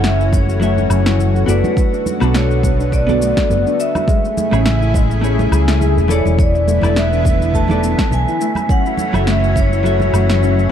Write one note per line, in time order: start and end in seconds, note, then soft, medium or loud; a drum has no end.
0.00 0.86 F#1 medium
0.00 1.74 E3 medium
0.00 8.36 A3 medium
0.00 1.74 C#4 medium
0.00 0.18 C#4 medium
0.00 4.04 F#4 medium
0.00 snare medium
0.05 0.19 E5 medium
0.05 shaker soft
0.20 0.32 E4 medium
0.20 shaker soft
0.33 1.52 C#5 medium
0.33 kick loud
0.33 high conga medium
0.33 shaker medium
0.49 0.61 F#4 medium
0.49 shaker soft
0.60 1.44 F#3 medium
0.60 0.70 A3 loud
0.60 1.45 F#4 medium
0.60 1.45 A4 medium
0.60 1.46 E5 medium
0.60 shaker soft
0.78 high conga medium
0.78 shaker soft
0.90 1.44 F#1 medium
0.90 1.05 C#4 medium
0.90 low woodblock medium
0.90 shaker medium
1.06 1.19 E4 medium
1.06 snare medium
1.06 shaker soft
1.19 high conga medium
1.19 shaker soft
1.35 1.48 F#4 medium
1.35 shaker soft
1.46 1.61 F#1 medium
1.46 1.57 A3 loud
1.46 2.17 B3 medium
1.46 2.18 F#4 medium
1.46 2.18 A4 medium
1.46 2.03 B4 medium
1.46 2.19 D5 medium
1.46 shaker medium
1.64 high conga loud
1.64 shaker soft
1.77 4.05 D3 medium
1.77 1.91 B3 medium
1.77 4.06 B3 medium
1.77 kick loud
1.77 shaker soft
1.93 2.05 D4 medium
1.93 shaker soft
2.06 high conga medium
2.06 shaker medium
2.20 3.32 B1 loud
2.20 3.04 B3 medium
2.20 3.05 D4 medium
2.20 3.04 F#4 medium
2.20 2.34 F#4 medium
2.20 3.05 A4 medium
2.20 low woodblock medium
2.20 shaker soft
2.34 2.44 A3 loud
2.34 2.89 C#5 medium
2.34 snare medium
2.34 shaker soft
2.51 shaker soft
2.63 2.78 B3 medium
2.63 kick loud
2.63 high conga medium
2.63 shaker medium
2.80 2.92 D4 medium
2.80 shaker soft
2.92 3.82 D5 medium
2.92 kick medium
2.92 shaker medium
3.07 4.05 B3 medium
3.07 4.06 F#4 medium
3.07 3.21 F#4 medium
3.07 4.06 A4 medium
3.07 4.07 D5 loud
3.07 high conga medium
3.07 shaker soft
3.22 3.30 A3 loud
3.22 shaker medium
3.37 kick loud
3.37 snare medium
3.37 shaker soft
3.50 3.63 F#1 medium
3.50 3.64 B3 medium
3.50 high conga medium
3.50 shaker soft
3.66 3.78 D4 medium
3.66 shaker soft
3.80 4.91 E5 loud
3.80 shaker medium
3.95 4.07 F#4 medium
3.95 high conga medium
3.95 low woodblock medium
3.95 shaker soft
4.08 6.36 C#3 medium
4.08 4.16 G#3 loud
4.08 6.36 E4 medium
4.08 6.36 G#4 medium
4.08 kick loud
4.08 shaker soft
4.25 shaker soft
4.37 4.51 A3 medium
4.37 high conga medium
4.37 shaker medium
4.51 5.48 A1 loud
4.51 4.59 A3 medium
4.51 4.65 C#4 medium
4.51 4.59 E4 medium
4.51 4.60 G#4 medium
4.51 4.60 C#5 medium
4.51 low woodblock medium
4.51 shaker soft
4.66 snare medium
4.66 shaker soft
4.82 4.94 E4 medium
4.82 shaker soft
4.94 5.03 G#3 loud
4.94 kick loud
4.94 high conga medium
4.94 shaker medium
5.11 shaker soft
5.21 6.06 A3 medium
5.21 5.38 A3 medium
5.21 6.06 E4 medium
5.21 6.07 G#4 medium
5.21 6.07 C#5 medium
5.21 shaker soft
5.39 5.52 C#4 medium
5.39 high conga medium
5.39 shaker soft
5.52 5.98 C#2 medium
5.52 5.67 G#4 medium
5.52 low woodblock medium
5.52 shaker medium
5.68 5.80 E4 medium
5.68 snare medium
5.68 shaker soft
5.81 5.95 G#4 loud
5.81 high conga medium
5.81 shaker soft
5.97 6.19 E1 medium
5.97 6.09 G#3 medium
5.97 shaker soft
6.08 6.79 E3 loud
6.08 6.79 E4 medium
6.08 6.24 A4 loud
6.08 6.80 A4 medium
6.08 6.40 C#5 medium
6.08 6.80 D5 loud
6.08 shaker medium
6.25 6.78 E1 loud
6.25 6.37 E4 medium
6.25 high conga medium
6.25 shaker soft
6.39 8.39 D3 medium
6.39 8.39 B3 medium
6.39 8.39 E4 medium
6.39 6.99 D5 medium
6.39 10.72 E5 medium
6.39 kick loud
6.39 shaker soft
6.55 6.67 E4 medium
6.55 shaker soft
6.68 6.76 A3 loud
6.68 high conga medium
6.68 shaker medium
6.81 7.93 E1 loud
6.81 7.65 E3 medium
6.81 7.66 E4 medium
6.81 7.66 A4 medium
6.81 7.67 D5 loud
6.81 low woodblock medium
6.81 shaker soft
6.96 7.11 B3 medium
6.96 7.56 E5 medium
6.96 snare medium
6.96 shaker soft
7.13 7.25 D4 medium
7.13 shaker soft
7.25 kick loud
7.25 high conga medium
7.25 shaker medium
7.42 7.54 E4 medium
7.42 shaker soft
7.54 7.63 A3 loud
7.54 8.14 A5 loud
7.54 kick medium
7.54 shaker soft
7.68 8.38 E3 medium
7.68 8.38 E4 medium
7.68 8.39 A4 medium
7.68 8.39 D5 medium
7.68 high conga medium
7.68 shaker soft
7.83 7.97 B3 medium
7.83 shaker medium
7.99 8.11 D4 medium
7.99 kick loud
7.99 snare medium
7.99 shaker soft
8.11 8.24 B1 medium
8.11 8.72 G#5 medium
8.11 high conga medium
8.11 shaker soft
8.28 8.40 E4 medium
8.28 shaker soft
8.41 10.72 E3 medium
8.41 10.72 A3 medium
8.41 8.50 A3 loud
8.41 10.72 C#4 medium
8.41 10.72 F#4 medium
8.41 shaker medium
8.55 high conga medium
8.55 low woodblock medium
8.55 shaker soft
8.69 8.84 C#4 medium
8.69 9.29 F#5 loud
8.69 kick loud
8.69 shaker soft
8.86 8.98 E4 medium
8.86 shaker soft
8.97 high conga medium
8.97 shaker medium
9.13 10.09 F#1 loud
9.13 9.21 F#3 medium
9.13 9.21 F#4 medium
9.13 9.27 F#4 medium
9.13 9.22 A4 medium
9.13 9.22 E5 medium
9.13 low woodblock medium
9.13 shaker soft
9.27 9.36 A3 loud
9.27 9.58 E5 medium
9.27 snare medium
9.27 shaker soft
9.44 shaker soft
9.55 9.70 C#4 medium
9.55 10.72 C#5 medium
9.55 kick loud
9.55 high conga medium
9.55 shaker medium
9.72 9.84 E4 medium
9.72 shaker soft
9.83 10.67 F#3 medium
9.83 10.68 F#4 medium
9.83 10.68 A4 medium
9.83 10.69 E5 medium
9.83 shaker soft
10.00 10.13 F#4 medium
10.00 high conga medium
10.00 shaker soft
10.13 10.67 F#1 medium
10.13 10.22 A3 loud
10.13 low woodblock medium
10.13 shaker medium
10.29 snare medium
10.29 shaker soft
10.42 10.57 C#4 medium
10.42 high conga medium
10.42 shaker soft
10.58 10.71 E4 medium
10.58 shaker soft